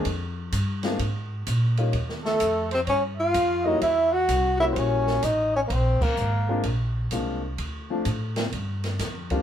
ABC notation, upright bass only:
X:1
M:4/4
L:1/8
Q:"Swing" 1/4=128
K:Eblyd
V:1 name="Upright bass" clef=bass
F,,2 G,,2 _A,,2 B,,2 | E,,2 F,,2 G,,2 F,,2 | =E,,2 C,,2 B,,,2 A,,,2 | B,,, z _A,,,2 B,,,2 C,,2 |
D,,2 A,,2 G,,2 F,,2 |]